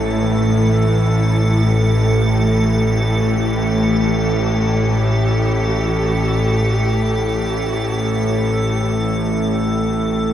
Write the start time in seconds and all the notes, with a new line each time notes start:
Already playing: A1 A2 E3 A3 E4 A4
1.54 G4